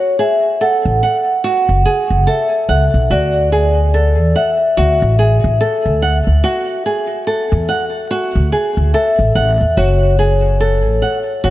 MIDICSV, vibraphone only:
0, 0, Header, 1, 2, 480
1, 0, Start_track
1, 0, Tempo, 833333
1, 1788, Time_signature, 4, 2, 24, 8
1, 6625, End_track
2, 0, Start_track
2, 0, Title_t, "Vibraphone"
2, 0, Program_c, 0, 11
2, 0, Note_on_c, 0, 73, 93
2, 117, Note_on_c, 0, 76, 93
2, 119, Note_off_c, 0, 73, 0
2, 355, Note_on_c, 0, 78, 101
2, 359, Note_off_c, 0, 76, 0
2, 808, Note_off_c, 0, 78, 0
2, 835, Note_on_c, 0, 78, 103
2, 1315, Note_on_c, 0, 76, 92
2, 1326, Note_off_c, 0, 78, 0
2, 1768, Note_off_c, 0, 76, 0
2, 1793, Note_on_c, 0, 74, 89
2, 2511, Note_on_c, 0, 76, 97
2, 2532, Note_off_c, 0, 74, 0
2, 5143, Note_off_c, 0, 76, 0
2, 5150, Note_on_c, 0, 76, 91
2, 5606, Note_off_c, 0, 76, 0
2, 5628, Note_on_c, 0, 73, 85
2, 6586, Note_off_c, 0, 73, 0
2, 6593, Note_on_c, 0, 73, 86
2, 6625, Note_off_c, 0, 73, 0
2, 6625, End_track
0, 0, End_of_file